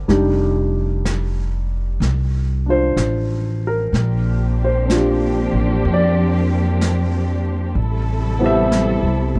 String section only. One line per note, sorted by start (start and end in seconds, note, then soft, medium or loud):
3.94 7.74 F3 medium
3.94 7.73 A#3 medium
3.94 7.73 C4 medium
3.94 7.73 D4 medium
3.94 7.73 G4 medium
7.75 9.39 C3 medium
7.75 9.39 G3 medium
7.75 9.39 E4 medium
7.75 9.39 A4 medium